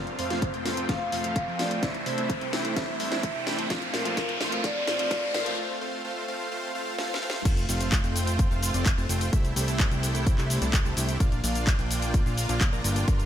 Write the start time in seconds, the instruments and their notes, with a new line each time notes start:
Already playing: analog synth bass F1, supersaw synth A3 C4 F4 C5 F5, string section A3 C4 F4, riser
0.07 closed hi-hat
0.18 analog synth bass F1, supersaw synth A3 C4 F4 C5 F5, vibraphone C5, open hi-hat
0.30 grand piano F3 A3 C4 F4, snare, closed hi-hat
0.42 kick, closed hi-hat
0.54 analog synth bass F1, supersaw synth A3 C4 F4 C5 G5, closed hi-hat
0.65 grand piano F3 A3 C4 F4, snare, open hi-hat
0.77 closed hi-hat
0.88 grand piano F3 A3 C4 F4, supersaw synth C4 F4 C5 F5, vibraphone F5, kick, snare, closed hi-hat
1.12 analog synth bass F1, supersaw synth A3 C4 F4 C5 F5, vibraphone F5, open hi-hat
1.24 grand piano F3 A3 C4 F4, closed hi-hat
1.36 kick, closed hi-hat
1.48 analog synth bass F2, supersaw synth A3 C4 F4 C5 G5
1.59 grand piano F3 A3 C4 F4, vibraphone D5, snare, open hi-hat
1.71 closed hi-hat
1.82 analog synth bass C2, string section C3 G3 D4 E4, grand piano E3 A3 C4 E4, supersaw synth A3 C4 E4 C5 E5, kick, snare, closed hi-hat
1.94 closed hi-hat
2.06 analog synth bass C2, supersaw synth A3 C4 E4 C5 E5, vibraphone C5, open hi-hat
2.17 grand piano E3 A3 C4 E4, closed hi-hat
2.30 kick, closed hi-hat
2.41 analog synth bass C2, supersaw synth A3 C4 E4 C5 G5, closed hi-hat
2.53 grand piano E3 A3 C4 E4, snare, open hi-hat
2.65 closed hi-hat
2.76 grand piano E3 A3 C4 E4, supersaw synth A3 C4 E4 C5 E5, vibraphone E5, kick, snare, closed hi-hat
3.00 analog synth bass C2, supersaw synth A3 C4 E4 C5 E5, vibraphone E5, open hi-hat
3.11 grand piano E3 A3 C4 E4, snare, closed hi-hat
3.23 kick, closed hi-hat
3.35 analog synth bass C2, supersaw synth A3 C4 E4 C5 G5
3.46 grand piano E3 A3 C4 E4, vibraphone C5, snare, open hi-hat
3.59 closed hi-hat
3.70 analog synth bass A#1, grand piano F3 A3 C4 F4, supersaw synth A3 C4 F4 C5 F5, string section A#3 F4, kick, snare, closed hi-hat
3.82 closed hi-hat
3.94 analog synth bass A#1, supersaw synth A3 C4 F4 C5 F5, vibraphone A#4, snare, open hi-hat
4.05 grand piano F3 A3 C4 F4, closed hi-hat
4.17 grand piano F3 A3 C4 F4, supersaw synth A3 C4 F4 C5, kick, snare, closed hi-hat
4.29 closed hi-hat
4.41 analog synth bass A#1, supersaw synth A3 C4 F4 C5 F5, snare, open hi-hat
4.52 grand piano F3 A3 C4 F4, closed hi-hat
4.64 analog synth bass A#1, grand piano F3 A3 C4 F4, supersaw synth A3 C4 F4 C5 F5, vibraphone D5, kick, snare, closed hi-hat
4.87 analog synth bass A#1, supersaw synth A3 C4 F4 C5 F5, vibraphone D5, snare, open hi-hat
4.99 grand piano F3 A3 C4 F4, closed hi-hat
5.10 grand piano F3 A3 C4 F4, supersaw synth A3 C4 F4 C5 F5, kick, snare, closed hi-hat
5.34 analog synth bass A#1, supersaw synth A3 C4 F4 C5 F5, vibraphone A#4, snare, open hi-hat
5.46 grand piano F3 A3 C4 F4, closed hi-hat
5.58 supersaw synth A3 C4 F4 C5 F5
5.81 supersaw synth A3 C4 F4 C5 F5
6.05 supersaw synth A3 C4 F4 C5 F5
6.28 supersaw synth A3 C4 F4 C5 F5
6.52 supersaw synth A3 C4 F4 C5 F5, swell
6.75 supersaw synth A3 C4 F4 C5 F5
6.98 supersaw synth A3 C4 F4 C5 F5, snare
7.14 snare
7.22 supersaw synth A3 C4 F4 C5 F5
7.30 snare
7.45 analog synth bass F1, string section A3 C4 F4, supersaw synth A3 C4 F4 C5, kick, closed hi-hat, crash, shaker
7.57 closed hi-hat, shaker
7.69 analog synth bass F1, supersaw synth A3 C4 F4 C5 F5, open hi-hat, shaker
7.81 closed hi-hat, shaker
7.92 kick, clap, closed hi-hat, shaker
8.04 analog synth bass F1, supersaw synth A3 C4 F4 C5 G5, closed hi-hat, shaker
8.16 open hi-hat, shaker
8.27 closed hi-hat, shaker
8.39 kick, closed hi-hat, shaker
8.51 analog synth bass F1, supersaw synth A3 C4 F4 C5 F5, shaker
8.63 open hi-hat, shaker
8.74 analog synth bass F1, supersaw synth A3 C4 F4 C5 D5, closed hi-hat, shaker
8.86 kick, clap, closed hi-hat, shaker
8.98 analog synth bass F1, supersaw synth A3 C4 F4 C5 A5, shaker
9.09 analog synth bass F1, supersaw synth A3 C4 F4 C5 G5, open hi-hat, shaker
9.21 closed hi-hat, shaker
9.33 analog synth bass C2, string section C3 G3 D4 E4, supersaw synth A3 E4 G4 C5 E5, kick, closed hi-hat, shaker
9.45 closed hi-hat, shaker
9.56 analog synth bass C2, supersaw synth A3 E4 G4 C5 E5, open hi-hat, shaker
9.68 closed hi-hat, shaker
9.80 kick, clap, closed hi-hat, shaker
9.91 analog synth bass C2, supersaw synth A3 E4 G4 C5 G5, closed hi-hat, shaker
10.03 open hi-hat, shaker
10.15 closed hi-hat, shaker
10.27 kick, closed hi-hat, shaker
10.38 analog synth bass C2, supersaw synth A3 E4 G4 C5 E5, clap, shaker
10.50 open hi-hat, shaker
10.62 analog synth bass C2, supersaw synth A3 E4 G4 C5 D5, closed hi-hat, shaker
10.73 kick, clap, closed hi-hat, shaker
10.85 analog synth bass C2, supersaw synth A3 E4 G4 C5 A5, shaker
10.97 analog synth bass C2, supersaw synth A3 E4 G4 C5 G5, open hi-hat, shaker
11.09 closed hi-hat, shaker
11.20 analog synth bass A#1, string section A#3 D4 F4, supersaw synth A#3 D4 F4 D5 F5, kick, closed hi-hat, shaker
11.32 closed hi-hat, shaker
11.44 analog synth bass A#1, supersaw synth A#3 D4 F4 D5 F5, open hi-hat, shaker
11.55 closed hi-hat, shaker
11.67 kick, clap, closed hi-hat, shaker
11.79 analog synth bass A#1, supersaw synth A#3 D4 F4 D5 G5, closed hi-hat, shaker
11.91 open hi-hat, shaker
12.02 closed hi-hat, shaker
12.14 kick, closed hi-hat, shaker
12.26 analog synth bass A#1, supersaw synth A#3 D4 F4 D5 F5, shaker
12.38 open hi-hat, shaker
12.49 analog synth bass A#1, supersaw synth A#3 D4 F4 D5 F5, closed hi-hat, shaker
12.61 kick, clap, closed hi-hat, shaker
12.73 analog synth bass A#1, supersaw synth A#3 D4 F4 D5 A#5, shaker
12.84 analog synth bass G1, supersaw synth A#3 D4 F4 D5 G5, open hi-hat, shaker
12.96 closed hi-hat, shaker
13.08 string section G3 A#4 A5, supersaw synth G3 D4 F4 A#4 F5, kick, closed hi-hat, shaker
13.20 closed hi-hat, shaker